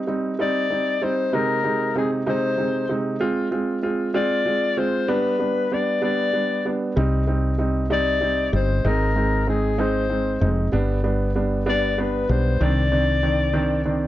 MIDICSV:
0, 0, Header, 1, 4, 480
1, 0, Start_track
1, 0, Key_signature, -3, "minor"
1, 0, Tempo, 625652
1, 1019, Time_signature, 6, 3, 24, 8
1, 10797, End_track
2, 0, Start_track
2, 0, Title_t, "Soprano saxophone"
2, 0, Program_c, 0, 64
2, 316, Note_on_c, 0, 74, 81
2, 790, Note_on_c, 0, 72, 76
2, 802, Note_off_c, 0, 74, 0
2, 1029, Note_on_c, 0, 70, 68
2, 1041, Note_off_c, 0, 72, 0
2, 1504, Note_off_c, 0, 70, 0
2, 1517, Note_on_c, 0, 68, 51
2, 1621, Note_off_c, 0, 68, 0
2, 1758, Note_on_c, 0, 72, 75
2, 2258, Note_off_c, 0, 72, 0
2, 3189, Note_on_c, 0, 74, 86
2, 3665, Note_on_c, 0, 72, 79
2, 3677, Note_off_c, 0, 74, 0
2, 3907, Note_on_c, 0, 71, 66
2, 3918, Note_off_c, 0, 72, 0
2, 4398, Note_on_c, 0, 74, 70
2, 4410, Note_off_c, 0, 71, 0
2, 4630, Note_off_c, 0, 74, 0
2, 4634, Note_on_c, 0, 74, 73
2, 5137, Note_off_c, 0, 74, 0
2, 6081, Note_on_c, 0, 74, 92
2, 6521, Note_off_c, 0, 74, 0
2, 6564, Note_on_c, 0, 72, 76
2, 6804, Note_on_c, 0, 70, 67
2, 6816, Note_off_c, 0, 72, 0
2, 7273, Note_off_c, 0, 70, 0
2, 7283, Note_on_c, 0, 68, 60
2, 7520, Note_on_c, 0, 72, 71
2, 7532, Note_off_c, 0, 68, 0
2, 8051, Note_off_c, 0, 72, 0
2, 8970, Note_on_c, 0, 74, 91
2, 9211, Note_on_c, 0, 71, 72
2, 9222, Note_off_c, 0, 74, 0
2, 9442, Note_on_c, 0, 72, 74
2, 9453, Note_off_c, 0, 71, 0
2, 9690, Note_on_c, 0, 74, 79
2, 9702, Note_off_c, 0, 72, 0
2, 10797, Note_off_c, 0, 74, 0
2, 10797, End_track
3, 0, Start_track
3, 0, Title_t, "Upright piano"
3, 0, Program_c, 1, 0
3, 54, Note_on_c, 1, 55, 52
3, 56, Note_on_c, 1, 60, 45
3, 58, Note_on_c, 1, 63, 55
3, 256, Note_off_c, 1, 55, 0
3, 257, Note_off_c, 1, 60, 0
3, 258, Note_off_c, 1, 63, 0
3, 297, Note_on_c, 1, 55, 62
3, 299, Note_on_c, 1, 60, 57
3, 305, Note_on_c, 1, 63, 69
3, 497, Note_off_c, 1, 55, 0
3, 499, Note_off_c, 1, 60, 0
3, 501, Note_off_c, 1, 63, 0
3, 536, Note_on_c, 1, 60, 44
3, 537, Note_on_c, 1, 55, 44
3, 541, Note_on_c, 1, 63, 53
3, 737, Note_off_c, 1, 55, 0
3, 737, Note_off_c, 1, 60, 0
3, 740, Note_off_c, 1, 63, 0
3, 778, Note_on_c, 1, 55, 50
3, 780, Note_on_c, 1, 60, 46
3, 784, Note_on_c, 1, 63, 56
3, 978, Note_off_c, 1, 55, 0
3, 979, Note_off_c, 1, 60, 0
3, 981, Note_off_c, 1, 63, 0
3, 1017, Note_on_c, 1, 48, 65
3, 1018, Note_on_c, 1, 56, 58
3, 1023, Note_on_c, 1, 60, 62
3, 1023, Note_on_c, 1, 63, 74
3, 1218, Note_off_c, 1, 48, 0
3, 1218, Note_off_c, 1, 56, 0
3, 1221, Note_off_c, 1, 60, 0
3, 1221, Note_off_c, 1, 63, 0
3, 1254, Note_on_c, 1, 48, 53
3, 1256, Note_on_c, 1, 56, 45
3, 1258, Note_on_c, 1, 60, 47
3, 1261, Note_on_c, 1, 63, 58
3, 1457, Note_off_c, 1, 48, 0
3, 1458, Note_off_c, 1, 56, 0
3, 1458, Note_off_c, 1, 60, 0
3, 1460, Note_off_c, 1, 63, 0
3, 1493, Note_on_c, 1, 48, 55
3, 1498, Note_on_c, 1, 56, 47
3, 1500, Note_on_c, 1, 60, 49
3, 1502, Note_on_c, 1, 63, 60
3, 1696, Note_off_c, 1, 48, 0
3, 1699, Note_off_c, 1, 56, 0
3, 1700, Note_off_c, 1, 60, 0
3, 1700, Note_off_c, 1, 63, 0
3, 1737, Note_on_c, 1, 48, 68
3, 1738, Note_on_c, 1, 56, 64
3, 1741, Note_on_c, 1, 60, 60
3, 1742, Note_on_c, 1, 63, 76
3, 1938, Note_off_c, 1, 48, 0
3, 1939, Note_off_c, 1, 56, 0
3, 1940, Note_off_c, 1, 60, 0
3, 1941, Note_off_c, 1, 63, 0
3, 1974, Note_on_c, 1, 48, 52
3, 1979, Note_on_c, 1, 56, 47
3, 1979, Note_on_c, 1, 60, 44
3, 1980, Note_on_c, 1, 63, 57
3, 2177, Note_off_c, 1, 48, 0
3, 2179, Note_off_c, 1, 56, 0
3, 2179, Note_off_c, 1, 60, 0
3, 2180, Note_off_c, 1, 63, 0
3, 2215, Note_on_c, 1, 48, 49
3, 2218, Note_on_c, 1, 56, 45
3, 2218, Note_on_c, 1, 60, 45
3, 2220, Note_on_c, 1, 63, 58
3, 2417, Note_off_c, 1, 48, 0
3, 2419, Note_off_c, 1, 56, 0
3, 2419, Note_off_c, 1, 60, 0
3, 2420, Note_off_c, 1, 63, 0
3, 2453, Note_on_c, 1, 56, 66
3, 2458, Note_on_c, 1, 60, 61
3, 2460, Note_on_c, 1, 65, 80
3, 2657, Note_off_c, 1, 56, 0
3, 2659, Note_off_c, 1, 60, 0
3, 2660, Note_off_c, 1, 65, 0
3, 2695, Note_on_c, 1, 56, 51
3, 2697, Note_on_c, 1, 60, 47
3, 2700, Note_on_c, 1, 65, 58
3, 2898, Note_off_c, 1, 56, 0
3, 2898, Note_off_c, 1, 60, 0
3, 2900, Note_off_c, 1, 65, 0
3, 2935, Note_on_c, 1, 56, 53
3, 2937, Note_on_c, 1, 60, 49
3, 2940, Note_on_c, 1, 65, 60
3, 3137, Note_off_c, 1, 56, 0
3, 3139, Note_off_c, 1, 60, 0
3, 3140, Note_off_c, 1, 65, 0
3, 3175, Note_on_c, 1, 56, 70
3, 3178, Note_on_c, 1, 60, 66
3, 3180, Note_on_c, 1, 65, 75
3, 3378, Note_off_c, 1, 56, 0
3, 3379, Note_off_c, 1, 60, 0
3, 3380, Note_off_c, 1, 65, 0
3, 3417, Note_on_c, 1, 56, 54
3, 3418, Note_on_c, 1, 60, 49
3, 3422, Note_on_c, 1, 65, 56
3, 3619, Note_off_c, 1, 56, 0
3, 3619, Note_off_c, 1, 60, 0
3, 3621, Note_off_c, 1, 65, 0
3, 3660, Note_on_c, 1, 56, 54
3, 3661, Note_on_c, 1, 60, 51
3, 3662, Note_on_c, 1, 65, 58
3, 3860, Note_off_c, 1, 56, 0
3, 3861, Note_off_c, 1, 60, 0
3, 3861, Note_off_c, 1, 65, 0
3, 3896, Note_on_c, 1, 55, 70
3, 3899, Note_on_c, 1, 59, 61
3, 3900, Note_on_c, 1, 62, 76
3, 4099, Note_off_c, 1, 55, 0
3, 4100, Note_off_c, 1, 59, 0
3, 4100, Note_off_c, 1, 62, 0
3, 4135, Note_on_c, 1, 55, 52
3, 4138, Note_on_c, 1, 59, 46
3, 4139, Note_on_c, 1, 62, 52
3, 4338, Note_off_c, 1, 55, 0
3, 4339, Note_off_c, 1, 59, 0
3, 4340, Note_off_c, 1, 62, 0
3, 4384, Note_on_c, 1, 55, 50
3, 4388, Note_on_c, 1, 59, 44
3, 4389, Note_on_c, 1, 62, 59
3, 4582, Note_off_c, 1, 55, 0
3, 4584, Note_off_c, 1, 59, 0
3, 4585, Note_off_c, 1, 62, 0
3, 4615, Note_on_c, 1, 55, 67
3, 4619, Note_on_c, 1, 62, 68
3, 4620, Note_on_c, 1, 59, 58
3, 4818, Note_off_c, 1, 55, 0
3, 4820, Note_off_c, 1, 59, 0
3, 4820, Note_off_c, 1, 62, 0
3, 4858, Note_on_c, 1, 55, 48
3, 4860, Note_on_c, 1, 59, 44
3, 4863, Note_on_c, 1, 62, 53
3, 5059, Note_off_c, 1, 55, 0
3, 5061, Note_off_c, 1, 59, 0
3, 5062, Note_off_c, 1, 62, 0
3, 5103, Note_on_c, 1, 55, 45
3, 5107, Note_on_c, 1, 59, 42
3, 5109, Note_on_c, 1, 62, 52
3, 5302, Note_off_c, 1, 55, 0
3, 5304, Note_off_c, 1, 59, 0
3, 5305, Note_off_c, 1, 62, 0
3, 5341, Note_on_c, 1, 55, 69
3, 5345, Note_on_c, 1, 60, 62
3, 5347, Note_on_c, 1, 63, 65
3, 5541, Note_off_c, 1, 55, 0
3, 5543, Note_off_c, 1, 60, 0
3, 5544, Note_off_c, 1, 63, 0
3, 5579, Note_on_c, 1, 55, 51
3, 5581, Note_on_c, 1, 60, 49
3, 5581, Note_on_c, 1, 63, 56
3, 5780, Note_off_c, 1, 55, 0
3, 5781, Note_off_c, 1, 60, 0
3, 5781, Note_off_c, 1, 63, 0
3, 5817, Note_on_c, 1, 55, 49
3, 5821, Note_on_c, 1, 60, 49
3, 5822, Note_on_c, 1, 63, 59
3, 6019, Note_off_c, 1, 55, 0
3, 6021, Note_off_c, 1, 60, 0
3, 6022, Note_off_c, 1, 63, 0
3, 6061, Note_on_c, 1, 55, 65
3, 6062, Note_on_c, 1, 60, 60
3, 6064, Note_on_c, 1, 63, 76
3, 6261, Note_off_c, 1, 55, 0
3, 6262, Note_off_c, 1, 60, 0
3, 6263, Note_off_c, 1, 63, 0
3, 6295, Note_on_c, 1, 55, 51
3, 6299, Note_on_c, 1, 60, 46
3, 6301, Note_on_c, 1, 63, 54
3, 6498, Note_off_c, 1, 55, 0
3, 6500, Note_off_c, 1, 60, 0
3, 6501, Note_off_c, 1, 63, 0
3, 6541, Note_on_c, 1, 55, 50
3, 6543, Note_on_c, 1, 60, 44
3, 6544, Note_on_c, 1, 63, 53
3, 6741, Note_off_c, 1, 55, 0
3, 6742, Note_off_c, 1, 60, 0
3, 6742, Note_off_c, 1, 63, 0
3, 6784, Note_on_c, 1, 56, 66
3, 6787, Note_on_c, 1, 60, 64
3, 6787, Note_on_c, 1, 63, 75
3, 6983, Note_off_c, 1, 56, 0
3, 6984, Note_off_c, 1, 60, 0
3, 6984, Note_off_c, 1, 63, 0
3, 7025, Note_on_c, 1, 56, 49
3, 7026, Note_on_c, 1, 60, 49
3, 7028, Note_on_c, 1, 63, 55
3, 7223, Note_off_c, 1, 56, 0
3, 7224, Note_off_c, 1, 60, 0
3, 7225, Note_off_c, 1, 63, 0
3, 7267, Note_on_c, 1, 56, 55
3, 7267, Note_on_c, 1, 60, 47
3, 7269, Note_on_c, 1, 63, 56
3, 7464, Note_off_c, 1, 56, 0
3, 7464, Note_off_c, 1, 60, 0
3, 7465, Note_off_c, 1, 63, 0
3, 7503, Note_on_c, 1, 56, 68
3, 7506, Note_on_c, 1, 60, 59
3, 7508, Note_on_c, 1, 63, 72
3, 7702, Note_off_c, 1, 56, 0
3, 7704, Note_off_c, 1, 60, 0
3, 7705, Note_off_c, 1, 63, 0
3, 7741, Note_on_c, 1, 56, 49
3, 7745, Note_on_c, 1, 63, 56
3, 7746, Note_on_c, 1, 60, 48
3, 7941, Note_off_c, 1, 56, 0
3, 7943, Note_off_c, 1, 63, 0
3, 7944, Note_off_c, 1, 60, 0
3, 7984, Note_on_c, 1, 56, 56
3, 7988, Note_on_c, 1, 60, 45
3, 7989, Note_on_c, 1, 63, 58
3, 8182, Note_off_c, 1, 56, 0
3, 8184, Note_off_c, 1, 60, 0
3, 8185, Note_off_c, 1, 63, 0
3, 8226, Note_on_c, 1, 55, 73
3, 8229, Note_on_c, 1, 59, 60
3, 8233, Note_on_c, 1, 62, 80
3, 8423, Note_off_c, 1, 55, 0
3, 8425, Note_off_c, 1, 59, 0
3, 8427, Note_off_c, 1, 62, 0
3, 8465, Note_on_c, 1, 55, 52
3, 8469, Note_on_c, 1, 59, 52
3, 8469, Note_on_c, 1, 62, 59
3, 8663, Note_off_c, 1, 55, 0
3, 8665, Note_off_c, 1, 59, 0
3, 8665, Note_off_c, 1, 62, 0
3, 8710, Note_on_c, 1, 55, 57
3, 8711, Note_on_c, 1, 59, 47
3, 8715, Note_on_c, 1, 62, 55
3, 8905, Note_off_c, 1, 55, 0
3, 8906, Note_off_c, 1, 59, 0
3, 8908, Note_off_c, 1, 62, 0
3, 8944, Note_on_c, 1, 55, 68
3, 8946, Note_on_c, 1, 59, 57
3, 8948, Note_on_c, 1, 62, 77
3, 9142, Note_off_c, 1, 55, 0
3, 9143, Note_off_c, 1, 59, 0
3, 9144, Note_off_c, 1, 62, 0
3, 9188, Note_on_c, 1, 55, 47
3, 9191, Note_on_c, 1, 59, 51
3, 9193, Note_on_c, 1, 62, 62
3, 9384, Note_off_c, 1, 55, 0
3, 9386, Note_off_c, 1, 59, 0
3, 9387, Note_off_c, 1, 62, 0
3, 9429, Note_on_c, 1, 55, 54
3, 9433, Note_on_c, 1, 59, 49
3, 9433, Note_on_c, 1, 62, 54
3, 9625, Note_off_c, 1, 55, 0
3, 9627, Note_off_c, 1, 59, 0
3, 9627, Note_off_c, 1, 62, 0
3, 9670, Note_on_c, 1, 51, 64
3, 9674, Note_on_c, 1, 60, 64
3, 9676, Note_on_c, 1, 62, 74
3, 9865, Note_off_c, 1, 51, 0
3, 9867, Note_off_c, 1, 60, 0
3, 9868, Note_off_c, 1, 62, 0
3, 9909, Note_on_c, 1, 51, 50
3, 9909, Note_on_c, 1, 60, 48
3, 9913, Note_on_c, 1, 62, 59
3, 10104, Note_off_c, 1, 51, 0
3, 10104, Note_off_c, 1, 60, 0
3, 10106, Note_off_c, 1, 62, 0
3, 10150, Note_on_c, 1, 51, 51
3, 10151, Note_on_c, 1, 60, 50
3, 10151, Note_on_c, 1, 62, 57
3, 10344, Note_off_c, 1, 51, 0
3, 10345, Note_off_c, 1, 60, 0
3, 10345, Note_off_c, 1, 62, 0
3, 10383, Note_on_c, 1, 51, 69
3, 10385, Note_on_c, 1, 60, 57
3, 10389, Note_on_c, 1, 62, 69
3, 10581, Note_off_c, 1, 51, 0
3, 10582, Note_off_c, 1, 60, 0
3, 10584, Note_off_c, 1, 62, 0
3, 10627, Note_on_c, 1, 51, 51
3, 10629, Note_on_c, 1, 60, 46
3, 10630, Note_on_c, 1, 62, 54
3, 10797, Note_off_c, 1, 51, 0
3, 10797, Note_off_c, 1, 60, 0
3, 10797, Note_off_c, 1, 62, 0
3, 10797, End_track
4, 0, Start_track
4, 0, Title_t, "Fretless electric bass"
4, 0, Program_c, 2, 35
4, 5345, Note_on_c, 2, 36, 71
4, 6513, Note_off_c, 2, 36, 0
4, 6545, Note_on_c, 2, 31, 75
4, 6769, Note_off_c, 2, 31, 0
4, 6786, Note_on_c, 2, 32, 71
4, 7953, Note_off_c, 2, 32, 0
4, 7989, Note_on_c, 2, 29, 68
4, 8211, Note_off_c, 2, 29, 0
4, 8229, Note_on_c, 2, 31, 62
4, 9394, Note_off_c, 2, 31, 0
4, 9431, Note_on_c, 2, 35, 73
4, 9652, Note_off_c, 2, 35, 0
4, 9672, Note_on_c, 2, 36, 79
4, 10797, Note_off_c, 2, 36, 0
4, 10797, End_track
0, 0, End_of_file